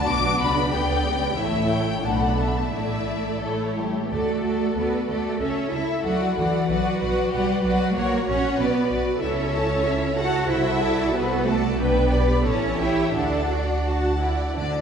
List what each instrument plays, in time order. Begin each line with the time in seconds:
Already playing: violin section F#4
0.07 double bass section B1, cello section B2, viola section B3 D4, violin section D5 D6
0.40 double bass section C#2, cello section C#3, violin section B5
0.73 double bass section D2, cello section D3, viola section B3, violin section G4 D5 G5
1.05 double bass section C#2, cello section C#3
1.37 double bass section A1, cello section A2, viola section A3 E4, violin section A4 C#5 E5
1.69 violin section G5
2.03 double bass section B1, cello section B2, viola section A3 D4, violin section A4 F#5 A5
2.12 violin section B5
2.21 violin section A5
2.29 violin section B5
2.38 violin section E5 A5
2.46 violin section B5
2.55 violin section A5
2.72 double bass section A1, cello section A2, viola section A3 E4, violin section A4 D5 E5
3.41 viola section A3 E4, cello section A3, violin section A4 C#5
3.76 cello section G3, violin section G4
4.04 cello section B3
4.10 double bass section D2, cello section A3, viola section F#4 A4, violin section A4 D5
4.43 double bass section D2, viola section F#4 A4, violin section A4 D5
4.76 double bass section D2, cello section B3, viola section F#4 A4, violin section A4 B4 D5
5.08 double bass section D2, cello section A3, viola section F#4 A4, violin section A4 D5
5.40 double bass section C#2, cello section C#4, violin section A4 C#5 E5, viola section A4
5.72 double bass section C#2, cello section E4, violin section A4 E5, viola section A4
6.04 double bass section D2, cello section F#3, violin section F#4 D5 F#5, viola section F#4 A4
6.36 double bass section D2, cello section E3, violin section E4 D5 F#5, viola section F#4 A4
6.68 double bass section B1, cello section F#3, violin section F#4 D5 F#5, viola section F#4 B4
7.01 double bass section B1, viola section F#4 B4, violin section D5 F#5
7.32 double bass section B1, cello section G3, viola section F#4 B4, violin section G4 D5 F#5
7.63 double bass section B1, cello section F#3, violin section F#4 D5 F#5, viola section F#4 B4
7.94 double bass section A#1, cello section A#3, viola section F#4 C#5, violin section A#4 C#5 F#5
8.26 double bass section A#1, cello section C#4, viola section F#4 C#5, violin section C#5 F#5
8.58 double bass section B1, cello section B3, viola section F#4 B4, violin section B4 D5
8.90 double bass section B1, viola section F#4 B4, violin section D5
9.20 double bass section C#2, cello section C#4, viola section E4 A4, violin section C#5 E5
9.53 viola section E4 A4, violin section C#5 A5
9.84 viola section E4 A4, violin section E5
10.17 viola section E4 A4, cello section F#4, violin section C#5 F#5 A5
10.49 double bass section C2, cello section E4, viola section F#4 A4, violin section C5 E5 F#5
10.82 viola section F#4 A4, violin section D5 A5
11.14 cello section B3, viola section F#4 A4, violin section B4 C5 F#5
11.46 cello section A3, viola section F#4 A4, violin section A4 D5 A5
11.79 double bass section B1, cello section B3, viola section D4 B4, violin section B4 G5
12.12 viola section G4 D5, violin section D5 B5
12.45 double bass section A1, cello section C#4, viola section E4 A4, violin section C#5 A5
12.80 cello section E4, viola section G4 C#5, violin section E5 G5
13.15 double bass section D2, viola section D4 A4, cello section D4, violin section D5 F#5 A5
13.51 viola section F#4, violin section D5 F#5
13.86 viola section F#4, violin section F#5 A5
14.21 viola section E4, violin section D5 F#5
14.55 double bass section D2, cello section D3, violin section D4 D5